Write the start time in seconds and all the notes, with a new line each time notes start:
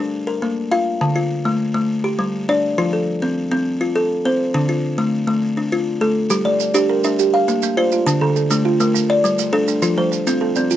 Already playing: D4
0.27 A#4
0.42 A#3
0.71 F4 F5
1.01 D3
1.16 F4
1.45 A3
1.74 A3
2.04 G4
2.19 G3
2.49 D4 D5
2.78 F3 F4
2.93 A4
3.22 C4
3.51 C4
3.81 F4
3.96 A4
4.25 C4 C5
4.54 D3 D4
4.69 F4
4.98 A3
5.27 A3
5.57 D4
5.72 F4
6.01 A3 A4
6.30 G3 G4, maracas
6.45 G3 D5
6.60 D5, maracas
6.74 D4 G4, maracas
6.89 A#4
7.04 D4 E5, maracas
7.19 G4, maracas
7.34 F5
7.48 A#3, maracas
7.62 A#3, maracas
7.77 F4 C5 D5
7.92 F4, maracas
8.06 D3 D4, maracas
8.21 D3 A4
8.36 A4, maracas
8.50 A3 D4, maracas
8.65 F4
8.80 A3 A#4, maracas
8.94 D4, maracas
9.10 D5
9.24 G3, maracas
9.39 G3, maracas
9.53 D4 A4
9.68 D4, maracas
9.82 F3 F4, maracas
9.98 F3 C5
10.12 C5, maracas
10.27 C4 F4, maracas
10.41 A4
10.56 C4 D5, maracas
10.71 F4, maracas